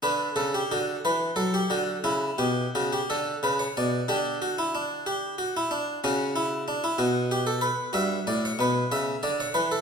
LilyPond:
<<
  \new Staff \with { instrumentName = "Harpsichord" } { \time 6/8 \key d \major \tempo 4. = 62 << { b'8 a'16 g'16 fis'8 b'8 a'16 g'16 fis'8 | e'8 g'8 fis'16 g'16 a'8 b'16 cis''16 d''8 | g'8 fis'16 e'16 d'8 g'8 fis'16 e'16 d'8 | cis'8 e'8 d'16 e'16 fis'8 g'16 a'16 b'8 |
e''8 d''16 cis''16 b'8 e''8 d''16 cis''16 b'16 a'16 | } \\ { d'2. | r2. | d'2. | fis'4. r4. |
fis'4. r4. | } >> }
  \new Staff \with { instrumentName = "Harpsichord" } { \clef bass \time 6/8 \key d \major d8 cis8 d8 e8 fis8 d8 | cis8 b,8 cis8 d8 cis8 b,8 | d2. | cis4. b,4. |
g,8 a,8 b,8 cis8 d8 e8 | }
>>